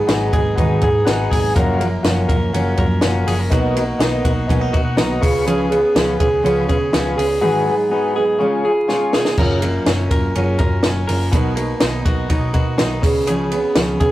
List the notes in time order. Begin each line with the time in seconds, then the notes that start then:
Already playing: G#2 B3 G#4
0.07 G#1 F#3 B3 D#4 F#4 G#4 B4, snare, ride
0.11 G#4
0.32 G#1 F#3 B3 D#4 G#4, kick, ride
0.55 G#1 G#2 D#3 F#3 B3 D#4 F#4 G#4 B4, kick, ride
0.60 G#4
0.81 G#2 F#3 B3 D#4 G#4, kick, ride
1.05 G#1 F#3 B3 F#4 G#4 B4 F#5, snare, ride
1.09 D#4 G#4
1.30 G#1 B3 D#4 G#4 G#5, kick, open hi-hat, ride
1.35 F#3
1.55 F#1 F#2 C#3 F3 A#3 C#4 F4 F#4 A#4, kick, hi-hat pedal, ride
1.80 F3 A#3 C#4 A#4, ride
2.03 F#1 F3 A#3 C#4 F4 F#4 A#4, snare, ride
2.07 A#4
2.28 F#1 F3 A#3 C#4 A#4, kick, ride
2.53 F#1 F#2 C#3 F3 A#3 C#4 F4 F#4 A#4, ride
2.77 F#2 F3 A#3 C#4 A#4, kick, ride
3.01 F#1 F3 A#3 C#4 F4 F#4 A#4, snare, ride
3.25 F#1 F3 A#3 C#4 G#4 A#4, open hi-hat, ride
3.39 A#4
3.50 B1 B2 F#3 A#3 B3 D#4 F#4 A#4, kick, hi-hat pedal, ride
3.75 A#3 D#4 F#4, ride
3.98 B1 F#3 A#3 B3 D#4 F#4 A#4, snare, ride
4.24 B1 A#3 D#4 F#4, kick, ride
4.47 B1 B2 F#3 A#3 B3 C#4 D#4 F#4 A#4, kick, ride
4.61 D#4
4.73 B2 A#3 F#4 D#5, kick, ride
4.84 F#5
4.96 B1 F#3 A#3 B3 D#4 F#4 A#5, snare, ride
5.00 F#4
5.21 C#2 C#3 C#4 F4 G#4 B4 C#6, kick, open hi-hat, ride
5.25 B3
5.45 C#3 F3 B3 C#4 G#4, hi-hat pedal, ride
5.70 B3 C#4 G#4, ride
5.94 C#2 F3 B3 C#4 F4 G#4 B4, snare, ride
6.19 C#2 B3 C#4 G#4, kick, ride
6.42 C#2 C#3 F3 B3 C#4 F4 G#4 B4, ride
6.67 C#3 B3 C#4 G#4, kick, ride
6.91 C#2 F3 B3 C#4 F4 G#4 B4, snare, ride
7.16 C#2 B3 C#4 G#4, open hi-hat, ride
7.41 G#2 D#3 F#3 B3 D#4 F#4 G#4 B4
7.66 F#3 B3 D#4 G#4
7.90 F#3 B3 D#4 F#4 G#4 B4
8.14 F#3 B3 D#4 G#4
8.38 C#3 G#3 C#4 F4 G#4 C#5
8.63 C#4 F4 G#4
8.88 G#3 C#4 F4 G#4 C#5, snare
9.13 C#4 F4 G#4, snare
9.25 snare
9.37 F#1 F#2 C#3 F#3 C#4 F4 A#4, kick, crash
9.61 F#3 A#3 C#4 F4 A#4, ride
9.85 F#1 F#3 C#4 F4 A#4, snare, ride
10.10 F#1 F#3 C#4 F4 A#4, kick, ride
10.35 F#1 F#2 C#3 F#3 C#4 F4 A#4, ride
10.59 F#2 C#4 F4 A#4, kick, ride
10.63 F#3
10.83 F#1 F#3 C#4 F4, snare, ride
10.87 A#4
11.08 F#1 F#3 C#4 F4 A#4, open hi-hat, ride
11.32 B1 B2 F#3 B3 D#4 F#4 A#4, kick, hi-hat pedal, ride
11.56 A#3 D#4 A#4, ride
11.60 B3
11.80 B1 F#3 B3 D#4 A#4, snare, ride
12.05 B1 B3 D#4 F#4 A#4, kick, ride
12.29 B1 B2 F#3 B3 D#4 A#4, kick, ride
12.53 B2 B3 D#4 F#4 A#4, kick, ride
12.77 B1 F#3 B3 D#4 A#4, snare, ride
13.02 C#2 C#3 B3 C#4 G#4, kick, open hi-hat, ride
13.27 C#3 F3 B3 C#4 G#4, hi-hat pedal, ride
13.51 B3 C#4 G#4, ride
13.75 C#2 F3 B3 C#4 G#4, snare, ride
14.00 C#2 B3 C#4 G#4, kick, ride